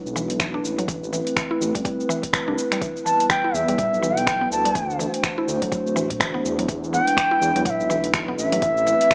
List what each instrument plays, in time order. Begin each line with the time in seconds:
Already playing: analog synth pad G#3 D4 E4 B4
0.05 detuned saw bass B1, cabasa
0.16 synth pluck E3, cabasa
0.30 closed hi-hat, cabasa
0.40 synth pluck E3, finger snap, kick, closed hi-hat, cabasa
0.54 synth pluck D4
0.64 detuned saw bass A1, cabasa
0.78 synth pluck F#3, closed hi-hat, cabasa
0.88 synth pluck E3, analog synth pad A3 C4, kick, closed hi-hat, cabasa
1.04 cabasa
1.13 synth pluck E3, cabasa
1.27 closed hi-hat, cabasa
1.36 synth pluck E3, finger snap, kick, closed hi-hat, cabasa
1.51 synth pluck E4
1.61 detuned saw bass A1, cabasa
1.75 detuned saw bass A1, synth pluck G3, kick, closed hi-hat, cabasa
1.85 synth pluck G3, kick, closed hi-hat, cabasa
2.00 cabasa
2.09 synth pluck E3, cabasa
2.23 kick, closed hi-hat, cabasa
2.33 synth pluck E3, finger snap, kick, closed hi-hat, cabasa
2.48 detuned saw bass C2, synth pluck D4
2.58 cabasa
2.72 synth pluck G3, finger snap, closed hi-hat, cabasa
2.81 synth pluck E3, analog synth pad G3 B3, kick, closed hi-hat, cabasa
2.97 cabasa
3.05 synth pluck E3, bansuri A5, cabasa
3.20 closed hi-hat, cabasa
3.29 synth pluck E3, bansuri G5, finger snap, kick, closed hi-hat, cabasa
3.44 synth pluck E4
3.54 detuned saw bass E2, bansuri E5, cabasa
3.68 detuned saw bass E2, synth pluck G3, closed hi-hat, cabasa
3.78 synth pluck G3, kick, closed hi-hat, mid tom, cabasa
3.92 detuned saw bass B1, cabasa
4.03 synth pluck E3, cabasa
4.17 bansuri G5, closed hi-hat, cabasa
4.27 synth pluck E3, finger snap, kick, closed hi-hat, cabasa
4.41 synth pluck B3
4.51 detuned saw bass D2, bansuri A5, cabasa
4.65 synth pluck G3, closed hi-hat, cabasa
4.75 synth pluck E3, analog synth pad A3 D4 F#4 C5, kick, closed hi-hat, cabasa
4.90 cabasa
4.99 synth pluck E3, cabasa
5.14 closed hi-hat, cabasa
5.23 synth pluck E3, finger snap, kick, closed hi-hat, cabasa
5.38 synth pluck E4
5.48 detuned saw bass D2, cabasa
5.62 detuned saw bass D2, synth pluck F#3, kick, closed hi-hat, cabasa
5.72 synth pluck F#3, kick, closed hi-hat, cabasa
5.86 detuned saw bass D1, cabasa
5.96 synth pluck E3, cabasa
6.10 kick, closed hi-hat, mid tom, cabasa
6.20 synth pluck E3, finger snap, kick, closed hi-hat, cabasa
6.34 synth pluck B3
6.45 detuned saw bass E2, cabasa
6.59 synth pluck F#3, closed hi-hat, cabasa
6.68 synth pluck E3, analog synth pad G#3 E4 B4, kick, closed hi-hat, cabasa
6.84 cabasa
6.93 synth pluck E3, bansuri F#5, cabasa
7.05 bansuri G5, closed hi-hat, cabasa
7.17 synth pluck E3, finger snap, kick, closed hi-hat, cabasa
7.31 synth pluck E4
7.41 detuned saw bass E2, cabasa
7.55 detuned saw bass E2, synth pluck F#3, closed hi-hat, cabasa
7.65 synth pluck F#3, bansuri F#5, kick, closed hi-hat, mid tom, cabasa
7.70 bansuri E5
7.79 detuned saw bass B1, cabasa
7.90 synth pluck E3, cabasa
8.04 closed hi-hat, cabasa
8.14 synth pluck E3, finger snap, kick, closed hi-hat, cabasa
8.28 synth pluck B3
8.38 detuned saw bass A1, bansuri E5, cabasa
8.52 synth pluck F#3, closed hi-hat, cabasa
8.62 synth pluck E3, analog synth pad A3 C4 E4, kick, closed hi-hat, cabasa
8.77 cabasa
8.87 synth pluck E3, cabasa
9.01 closed hi-hat, cabasa
9.11 synth pluck E3, finger snap, kick, closed hi-hat